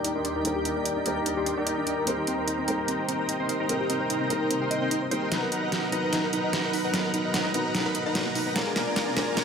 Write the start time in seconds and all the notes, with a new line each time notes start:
Already playing: D#2 G3 A#3 D#4 G4 A#4 D5 G5 A#5
0.04 D#4, closed hi-hat
0.15 D4 D#4 A#4 D5 G5 C6
0.25 D4, closed hi-hat
0.36 D#4 A#4 D5 G5 A#5
0.43 G3 A#3 D4 D#4 A#4 D5, closed hi-hat
0.56 G4
0.65 D4 D#4 A#4 D5 G5 A#5, closed hi-hat
0.76 D5
0.85 D#4, closed hi-hat
0.97 D4
1.04 G3 A#3 D4 D#4 A#4 D5 G5 A#5, closed hi-hat
1.17 A#4
1.26 D4, closed hi-hat
1.37 D#4 G4 A#4 D5 G5 C6
1.46 D4, closed hi-hat
1.57 D#4 A#4 D5 G5 A#5
1.67 D#4, closed hi-hat
1.78 D4
1.87 D4, closed hi-hat
1.98 A#4
2.05 C3 G3 A#3 C4 D#4 A#4 C5 G5 A#5, closed hi-hat
2.09 A#4
2.18 G4
2.27 C4 D#4 A#4 C5 G5 A#5, closed hi-hat
2.38 C5
2.48 D#4, closed hi-hat
2.59 C4
2.66 G3 A#3 C4 D#4 A#4 C5 G5 A#5, closed hi-hat
2.79 A#4
2.88 C4, closed hi-hat
2.99 G4
3.08 C4 D#4 A#4 C5 G5 A#5, closed hi-hat
3.19 C5
3.29 D#4, closed hi-hat
3.40 C4 D#4 A#4 C5 G5 C6
3.49 C4, closed hi-hat
3.60 D#4 A#4 C5 G5 A#5
3.67 G3 A#3 C4 D#4 A#4, closed hi-hat
3.81 G4
3.89 C4 D#4 A#4 C5 G5 A#5, closed hi-hat
4.01 C5
4.10 D#4, closed hi-hat
4.21 C4
4.28 G3 A#3 C4 D#4 A#4 C5 G5 A#5, closed hi-hat
4.32 A#4
4.41 A#4
4.50 C4, closed hi-hat
4.62 D#4 G4 A#4 C5 G5 C6
4.71 D#5, closed hi-hat
4.82 C4 D#4 A#4 C5 G5 C6
4.91 D#4, closed hi-hat
5.02 C5
5.10 G3 A#3 C4 D#4 A#4 C5 G5 C6, closed hi-hat
5.22 G4
5.30 B2 F#3 B3 D#4 A#4 B4 F#5 A#5, snare, closed hi-hat, riser
5.34 A#5
5.43 A#4
5.52 D#4 A#4 B4 F#5 A#5, closed hi-hat
5.63 D#5
5.72 F#4, snare, closed hi-hat
5.83 D#4
5.90 F#3 B3 D#4 A#4 B4 F#5 A#5, closed hi-hat
5.94 A#5
6.03 B4
6.13 D#4, snare, closed hi-hat
6.24 A#4
6.33 D#4 A#4 B4 F#5 A#5, closed hi-hat
6.44 D#5
6.53 F#4, snare, closed hi-hat
6.64 D#4 A#4 B4 F#5 B5
6.73 D#4, open hi-hat
6.84 D#4 A#4 B4 F#5 A#5
6.91 F#3 B3 D#4, snare, closed hi-hat
6.95 A#5
7.05 A#4
7.14 D#4 A#4 B4 F#5 A#5, closed hi-hat
7.25 D#5
7.34 F#4, snare, closed hi-hat
7.45 D#4
7.52 F#3 B3 D#4 A#4 B4 F#5 A#5, closed hi-hat
7.66 B4
7.75 D#4, snare, closed hi-hat
7.86 D#4 A#4 B4 F#5 B5
7.95 D#4, closed hi-hat
8.06 D#4 A#4 B4 D#5 F#5 A#5
8.15 F#4, snare, closed hi-hat
8.26 D#4
8.35 D#4, open hi-hat
8.47 B4
8.54 A#2 G#3 A#3 D4 F4 A#4 D5 G#5 A#5, snare, closed hi-hat
8.67 G#4
8.76 D4 F4 A#4 D5 G#5 A#5, snare, closed hi-hat
8.87 D5
8.96 F4, snare, closed hi-hat
9.07 D4
9.14 G#3 A#3 D4 F4 A#4 D5 G#5 A#5, snare, closed hi-hat
9.28 A#4
9.37 D4, snare, closed hi-hat